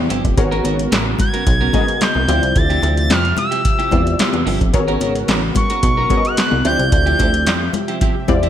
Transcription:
Already playing: analog synth pad C3 F3 G4 E5
0.10 analog synth bass G1, clean electric guitar F3 C4 E4 G4, closed hi-hat
0.24 analog synth bass F1, muted clean electric guitar stroke, kick, closed hi-hat
0.37 analog synth bass G#1, analog synth pad C#3 B3 F#4 A#4, analog polysynth B3 F#4 G#4 A#4 C#5, muted clean electric guitar stroke, kick, closed hi-hat
0.51 clean electric guitar B3 C#4 F#4 A#4, closed hi-hat
0.64 analog synth bass G#1, clean electric guitar B3 C#4 F#4 A#4, closed hi-hat, muted conga
0.79 muted clean electric guitar stroke, closed hi-hat
0.91 analog synth bass A1, clean electric guitar B3 C#4 F#4 A#4, snare, clap, closed hi-hat, high conga
1.06 muted clean electric guitar stroke
1.19 analog synth lead G#6, muted clean electric guitar stroke, kick, closed hi-hat, muted conga, low conga
1.34 clean electric guitar B3 C#4 F#4 A#4, closed hi-hat
1.46 analog synth bass B1, muted clean electric guitar stroke, kick, closed hi-hat, muted conga
1.61 clean electric guitar B3 C#4 F#4 A#4
1.73 analog polysynth A#3 F#4 G#4 A#4 D#5, clean electric guitar B3 C#4 F#4 A#4, kick, closed hi-hat, muted conga, low conga
1.80 analog polysynth B3
1.88 muted clean electric guitar stroke, closed hi-hat
2.01 analog synth lead G6, snare, clap, closed hi-hat, high conga
2.15 analog synth bass C2, muted clean electric guitar stroke, high conga
2.28 analog synth bass D2, analog synth pad C3 F3 G4 E5, clean electric guitar F3 C4 E4 G4, analog polysynth C4 E4 F4 G4 D5, closed hi-hat
2.43 analog synth bass C2, muted clean electric guitar stroke, closed hi-hat
2.55 analog synth bass D2, analog synth lead A6, muted clean electric guitar stroke, kick, closed hi-hat
2.70 clean electric guitar F3 C4 E4 G4, closed hi-hat
2.82 analog synth bass D2, clean electric guitar F3 C4 E4 G4, closed hi-hat, muted conga
2.97 analog synth lead A6, muted clean electric guitar stroke, closed hi-hat
3.10 analog synth bass F2, clean electric guitar F3 C4 E4 G4, analog synth lead F6, snare, clap, closed hi-hat, high conga
3.24 muted clean electric guitar stroke, closed hi-hat
3.37 analog synth lead E6, muted clean electric guitar stroke, closed hi-hat, muted conga, low conga
3.51 clean electric guitar F3 C4 E4 G4, closed hi-hat
3.64 muted clean electric guitar stroke, kick, closed hi-hat
3.79 clean electric guitar F3 C4 E4 G4, closed hi-hat
3.91 analog synth bass E2, clean electric guitar F3 C4 E4 G4, analog polysynth C4 E4 F4 G4 D5, kick, closed hi-hat, muted conga, low conga
4.06 muted clean electric guitar stroke, closed hi-hat
4.19 snare, clap, closed hi-hat, high conga
4.33 analog synth bass E2, muted clean electric guitar stroke, closed hi-hat, high conga
4.46 analog synth bass G1, clean electric guitar F3 C4 E4 G4, open hi-hat
4.61 analog synth bass F1, muted clean electric guitar stroke, kick, closed hi-hat, high conga
4.73 analog synth bass G#1, analog synth pad C#3 B3 F#4 A#4, analog polysynth B3 F#4 G#4 A#4 C#5, muted clean electric guitar stroke, kick, closed hi-hat
4.88 clean electric guitar B3 C#4 F#4 A#4, closed hi-hat
5.01 analog synth bass G#1, clean electric guitar B3 C#4 F#4 A#4, closed hi-hat, muted conga
5.15 muted clean electric guitar stroke, closed hi-hat
5.28 analog synth bass A1, clean electric guitar B3 C#4 F#4 A#4, snare, clap, closed hi-hat, high conga
5.43 muted clean electric guitar stroke
5.55 analog synth lead C#6, muted clean electric guitar stroke, kick, closed hi-hat, muted conga, low conga
5.70 clean electric guitar B3 C#4 F#4 A#4, closed hi-hat
5.83 analog synth bass B1, muted clean electric guitar stroke, kick, closed hi-hat, muted conga
5.97 clean electric guitar B3 C#4 F#4 A#4
6.10 clean electric guitar B3 C#4 F#4 A#4, analog polysynth B3 F#4 G#4 A#4 C#5, kick, closed hi-hat, muted conga, low conga
6.17 analog polysynth D#5
6.25 analog synth lead F#6, muted clean electric guitar stroke, closed hi-hat
6.37 snare, clap, closed hi-hat, high conga
6.51 analog synth bass C2, muted clean electric guitar stroke, high conga
6.65 analog synth bass D2, analog synth pad C3 F3 G4 E5, clean electric guitar F3 C4 E4 G4, analog polysynth C4 E4 F4 G4 D5, analog synth lead G6, closed hi-hat
6.79 analog synth bass C2, muted clean electric guitar stroke, closed hi-hat
6.92 analog synth bass D2, analog synth lead G6, muted clean electric guitar stroke, kick, closed hi-hat
7.06 clean electric guitar F3 C4 E4 G4, closed hi-hat
7.19 analog synth bass D2, clean electric guitar F3 C4 E4 G4, kick, closed hi-hat, muted conga
7.33 muted clean electric guitar stroke, closed hi-hat
7.46 analog synth bass F2, clean electric guitar F3 C4 E4 G4, snare, clap, closed hi-hat, high conga
7.61 muted clean electric guitar stroke
7.73 muted clean electric guitar stroke, closed hi-hat, muted conga, low conga
7.88 clean electric guitar F3 C4 E4 G4, closed hi-hat
8.01 clean electric guitar F3 C4 E4 G4, kick, closed hi-hat, muted conga
8.16 muted clean electric guitar stroke
8.28 analog synth bass E2, analog polysynth C4 E4 F4 G4 D5, muted clean electric guitar stroke, kick, closed hi-hat, muted conga, low conga
8.43 clean electric guitar F3 C4 E4 G4, closed hi-hat

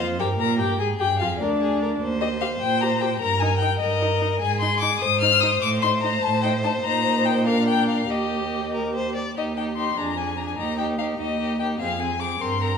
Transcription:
Already playing: violin C5
0.00 cello F2, viola F4
0.19 cello G2, viola G4, violin A#4 G5
0.39 cello A#2, viola A#4, violin A#5
0.59 cello G2, viola G4, violin G5
0.79 cello G#2, violin G#4 G#5, viola G#4
0.99 cello G2, viola G4, violin G5
1.19 cello F2, viola F4, violin F5
1.39 cello D2, viola D4, violin A#4 D5
1.61 violin G#4
1.82 violin A#4
2.01 cello D#2, violin C5
2.21 viola G4, violin D#5
2.41 viola G4, violin F5
2.60 cello A#2, violin G5
2.81 viola G4, violin A#5
3.01 viola G4, violin G5
3.20 cello G2, violin A#4 A#5
3.40 viola D#4, violin G#5
3.59 viola D#4, violin G5
3.79 cello G2, violin A#4 D#5
4.01 viola D#4
4.21 viola D#4
4.40 cello G#2, violin G#4 G#5
4.61 viola D#4, violin C6
4.80 viola D#4, violin D6
5.00 cello G#2, violin C5 D#6
5.21 viola D#4, violin F6
5.41 viola D#4, violin D#6
5.62 cello A2, violin D6
5.82 viola D#4, violin C6
6.01 viola D#4, violin A#5
6.22 cello A2, violin A5
6.42 viola D#4, violin G5
6.64 viola D#4, violin A5
6.84 cello A#2, viola D#4, violin A#5
7.25 violin G5
7.46 viola D4, violin A#4 F5
7.68 violin G5
7.89 violin F5
8.10 cello D#2, violin G4 D#5, viola G4
8.74 violin A#4
8.95 violin C5
9.15 violin D5
9.36 cello D#2, viola D#4, violin G4 D#5
9.57 viola D#4, violin G4 G5
9.76 viola D#4, violin G4 C6
9.97 cello F2, viola D4, violin G#4 A#5
10.17 viola D4, violin G#4 G#5
10.37 viola D4, violin G#4 A#5
10.47 violin G#5
10.57 cello D#2, viola D#4, violin G4 A#5
10.78 viola D#4, violin G4 G5
10.98 viola D#4, violin G4 F5
11.19 cello D#2, viola D#4, violin G4 D#5
11.40 viola D#4, violin G4
11.59 viola D#4, violin G4 G5
11.79 cello F2, viola C4, violin G#4 F5
12.00 viola C4, violin G#4 G#5
12.20 viola C4, violin G#4 D6
12.40 cello G2, viola C4, violin A#4 C6
12.60 viola C4, violin A#4 A#5

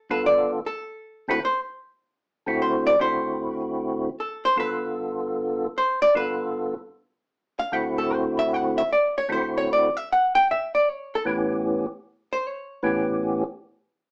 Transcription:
0.10 tonewheel organ G2 D3 B3 F4 A4, hollow-body jazz guitar B4
0.26 hollow-body jazz guitar D5
0.66 hollow-body jazz guitar A4
1.28 tonewheel organ D2 D3 C4 E4 F#4, hollow-body jazz guitar B4
1.45 hollow-body jazz guitar C5
2.46 tonewheel organ D2 D3 C4 E4 F#4
2.62 hollow-body jazz guitar C5
2.87 hollow-body jazz guitar D5
2.99 tonewheel organ D2 D3 C4 E4 F#4, hollow-body jazz guitar C5
4.20 hollow-body jazz guitar A4
4.45 hollow-body jazz guitar C5
4.56 tonewheel organ G2 D3 B3 F4 A4, hollow-body jazz guitar B4
5.78 hollow-body jazz guitar C5
6.02 hollow-body jazz guitar D5
6.14 tonewheel organ G2 D3 B3 F4 A4, hollow-body jazz guitar B4
7.59 hollow-body jazz guitar F5
7.72 tonewheel organ D2 D3 C4 E4 F#4, hollow-body jazz guitar F#5
7.98 hollow-body jazz guitar A4
8.14 hollow-body jazz guitar C5
8.39 hollow-body jazz guitar E5
8.54 hollow-body jazz guitar F#5
8.78 hollow-body jazz guitar E5
8.93 hollow-body jazz guitar D5
9.18 hollow-body jazz guitar C#5
9.28 tonewheel organ D2 D3 C4 E4 F#4
9.32 hollow-body jazz guitar C5
9.58 hollow-body jazz guitar C#5
9.73 hollow-body jazz guitar D5
9.97 hollow-body jazz guitar E5
10.12 hollow-body jazz guitar F#5
10.35 hollow-body jazz guitar G5
10.51 hollow-body jazz guitar E5
10.75 hollow-body jazz guitar D5
10.90 hollow-body jazz guitar C#5
11.15 hollow-body jazz guitar A4
11.25 tonewheel organ A2 E3 B3 C#4 G4
12.33 hollow-body jazz guitar C5
12.48 hollow-body jazz guitar C#5
12.83 tonewheel organ A2 E3 B3 C#4 G4

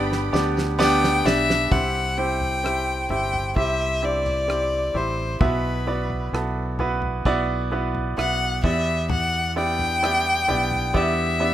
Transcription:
Already playing: fingered electric bass G1, nylon-string guitar G2 G3 B3 D4, grand piano G2 B3 D4 G4 B4 D5, violin G5, violin section B5
0.12 snare
0.32 fingered electric bass D2, grand piano B3 D4 G4 D5, nylon-string guitar G4, snare, tambourine
0.57 snare, tambourine
0.79 grand piano B3 D4 G4 D5, nylon-string guitar D4, violin G5, snare, tambourine
1.04 snare
1.25 fingered electric bass B1, grand piano B3 D4 G4 D5, violin E5, snare, tambourine
1.50 snare
1.71 fingered electric bass C2, grand piano C3 C4 E4 G4 E5, nylon-string guitar C3 G4, violin F#5, kick, floor tom
2.17 grand piano C4 E4 G4 C5, nylon-string guitar E4, violin G5
2.41 floor tom
2.64 nylon-string guitar G3, grand piano C4 E4 G4 E5, cross-stick
3.09 fingered electric bass G1, grand piano C4 E4 G4 E5, nylon-string guitar E4, violin G5, floor tom
3.33 floor tom
3.56 fingered electric bass C2, nylon-string guitar G3, grand piano C4 E4 G4 E5, violin E5, kick, floor tom
4.02 grand piano C4 E4 G4 E5, nylon-string guitar D4, violin D5
4.26 nylon-string guitar E4, floor tom
4.48 nylon-string guitar G3, grand piano C4 E4 G4 E5, cross-stick
4.94 fingered electric bass A1, grand piano C4 E4 G4 E5, nylon-string guitar E4, violin C5, floor tom
5.40 fingered electric bass B1, grand piano B2 B3 E4 F#4 E5, nylon-string guitar B2 F#4, violin B4, kick, floor tom
5.87 grand piano B3 E4 F#4 D5, nylon-string guitar E4
6.10 floor tom
6.33 fingered electric bass B1, grand piano B3 E4 F#4 A4, nylon-string guitar B3, cross-stick
6.79 grand piano B3 E4 F#4 B4, nylon-string guitar E4, floor tom
7.02 floor tom
7.25 fingered electric bass B1, grand piano B3 E4 F#4 D5, nylon-string guitar B3, kick, floor tom
7.72 grand piano B3 E4 F#4 B4, nylon-string guitar E4
7.95 floor tom
8.17 fingered electric bass B1, grand piano B3 E4 F#4 E5, nylon-string guitar B3, violin F#5, cross-stick
8.64 fingered electric bass E2, nylon-string guitar E2, grand piano E3 B3 E4 G4 D5, violin E5, kick, floor tom
9.10 nylon-string guitar E2 E4, violin F#5, floor tom
9.56 grand piano B3 E4 G4 D5, nylon-string guitar C4, violin G5
9.79 nylon-string guitar D4, floor tom
10.03 nylon-string guitar G3, grand piano B3 E4 G4 D5, cross-stick
10.48 fingered electric bass B1, grand piano B3 E4 G4 D5, nylon-string guitar D4, floor tom
10.71 floor tom
10.94 fingered electric bass E2, nylon-string guitar G3, grand piano B3 E4 G4 D5, violin E5, kick
11.40 grand piano B3 E4 G4 D5, nylon-string guitar D4

